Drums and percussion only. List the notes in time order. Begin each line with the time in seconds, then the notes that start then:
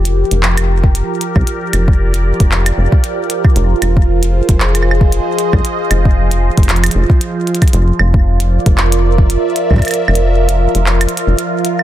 0.05 closed hi-hat
0.31 closed hi-hat
0.43 clap
0.57 closed hi-hat, claves
0.84 kick
0.95 closed hi-hat
1.21 closed hi-hat
1.36 kick, claves
1.47 closed hi-hat
1.73 closed hi-hat, claves
1.88 kick
2.14 closed hi-hat
2.40 kick, closed hi-hat
2.52 clap
2.66 closed hi-hat, claves
2.92 kick
3.04 closed hi-hat
3.30 closed hi-hat
3.44 kick, claves
3.56 closed hi-hat
3.82 closed hi-hat, claves
3.97 kick
4.23 closed hi-hat
4.49 kick, closed hi-hat
4.60 clap
4.75 closed hi-hat, claves
4.83 claves
4.91 claves
5.01 kick
5.12 closed hi-hat
5.39 closed hi-hat
5.53 kick, claves
5.65 closed hi-hat
5.91 closed hi-hat, claves
6.05 kick
6.31 closed hi-hat
6.58 kick, closed hi-hat
6.63 closed hi-hat
6.69 clap, closed hi-hat
6.76 closed hi-hat
6.84 closed hi-hat, claves
6.86 closed hi-hat
6.91 closed hi-hat
7.10 kick
7.21 closed hi-hat
7.47 closed hi-hat
7.55 closed hi-hat
7.62 kick, closed hi-hat, claves
7.68 closed hi-hat
7.73 closed hi-hat
7.99 claves
8.14 kick
8.40 closed hi-hat
8.66 kick, closed hi-hat
8.78 clap
8.92 closed hi-hat
9.18 kick
9.30 closed hi-hat
9.56 closed hi-hat
9.71 kick, claves
9.73 kick, claves
9.76 kick, claves
9.79 kick, closed hi-hat, claves
9.85 closed hi-hat, claves
9.88 closed hi-hat, claves
9.91 closed hi-hat
9.94 closed hi-hat
10.08 claves
10.15 closed hi-hat
10.49 closed hi-hat
10.75 closed hi-hat
10.86 clap
11.01 closed hi-hat, claves
11.09 closed hi-hat
11.17 closed hi-hat
11.39 closed hi-hat
11.65 closed hi-hat
11.79 claves